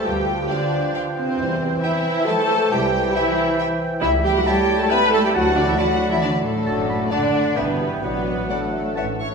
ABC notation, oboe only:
X:1
M:3/4
L:1/8
Q:1/4=136
K:C
V:1 name="Oboe"
g6- | g6 | g6 | [K:D] b2 a2 g2 |
a2 b4 | a b a2 g2 | f4 a z |]